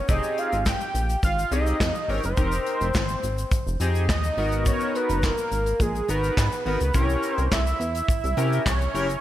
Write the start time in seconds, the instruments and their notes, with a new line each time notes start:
Already playing: analog synth lead C#5
0.09 analog synth bass F1, analog polysynth C4 D#4 G4 G#4, analog synth lead D#5, kick, closed hi-hat, shaker
0.23 shaker
0.38 analog synth lead F5, closed hi-hat
0.52 analog synth bass G#1, closed hi-hat, shaker
0.66 analog synth lead G5, kick, snare, clap, shaker
0.81 closed hi-hat, shaker
0.94 analog synth bass A#1, closed hi-hat, shaker
1.09 closed hi-hat, shaker
1.23 analog synth bass G#1, analog synth lead F5, kick, closed hi-hat, shaker
1.38 closed hi-hat, shaker
1.51 analog synth bass C2, analog polysynth C4 D#4 G4 G#4, analog synth lead D#5, closed hi-hat, shaker
1.66 closed hi-hat, shaker
1.80 analog synth bass F2, kick, snare, clap, shaker
1.95 closed hi-hat, shaker
2.08 analog synth bass G#1, analog polysynth C4 D#4 G4 A#4, analog synth lead C#5, open hi-hat
2.23 analog synth bass F#1, analog synth lead C5, closed hi-hat, shaker
2.37 analog synth bass F1, analog polysynth C4 D#4 G4 A#4, kick, closed hi-hat, shaker
2.52 closed hi-hat, shaker
2.66 closed hi-hat
2.81 analog synth bass F1, closed hi-hat, shaker
2.94 analog synth bass G#1, kick, snare, clap, shaker
3.09 closed hi-hat, shaker
3.23 analog synth bass G#1, closed hi-hat, shaker
3.38 closed hi-hat, shaker
3.52 kick, closed hi-hat, shaker
3.67 analog synth bass F1, shaker
3.80 analog synth bass F2, analog polysynth C4 D#4 G4 G#4, closed hi-hat, shaker
3.95 closed hi-hat, shaker
4.09 analog synth bass D#2, analog synth lead D#5, kick, snare, clap, shaker
4.24 closed hi-hat, shaker
4.37 analog synth bass G#1, analog polysynth B3 D#4 F#4 A#4, open hi-hat
4.52 closed hi-hat, shaker
4.66 analog synth lead C#5, kick, closed hi-hat, shaker
4.80 shaker
4.95 analog synth lead B4, closed hi-hat
5.09 analog synth bass F#1, closed hi-hat, shaker
5.23 analog synth lead A#4, kick, snare, clap, shaker
5.38 shaker
5.51 analog synth bass G#1, closed hi-hat, shaker
5.66 closed hi-hat, shaker
5.80 analog synth bass A#1, analog synth lead G#4, kick, closed hi-hat, shaker
5.95 closed hi-hat, shaker
6.08 analog synth bass G#1, analog polysynth B3 D#4 F#4 A#4, analog synth lead B4, closed hi-hat, shaker
6.23 closed hi-hat, shaker
6.37 analog synth bass G#2, kick, snare, clap, shaker
6.52 shaker
6.66 analog synth bass G#1, analog polysynth B3 D#4 F#4 A#4, analog synth lead B4, open hi-hat
6.80 analog synth bass C#2, closed hi-hat, shaker
6.94 analog synth bass C2, analog polysynth C#4 E4 G4 A#4, analog synth lead C#5, kick, closed hi-hat, shaker
7.09 shaker
7.23 closed hi-hat, shaker
7.34 analog synth bass C2, analog synth lead C5, closed hi-hat
7.39 shaker
7.51 analog synth bass C2, analog synth lead E5, kick, snare, clap, shaker
7.66 closed hi-hat, shaker
7.80 analog synth bass E2, closed hi-hat, shaker
7.95 closed hi-hat, shaker
8.08 kick, closed hi-hat, shaker
8.23 analog synth bass C2, closed hi-hat, shaker
8.37 analog synth bass C3, analog polysynth C#4 E4 G4 A#4, closed hi-hat, shaker
8.53 closed hi-hat, shaker
8.66 analog synth bass C2, analog synth lead C#5, kick, snare, clap, shaker
8.81 closed hi-hat, shaker
8.94 analog synth bass F#1, analog polysynth C#4 E4 G4 A#4, open hi-hat, shaker
9.09 closed hi-hat, shaker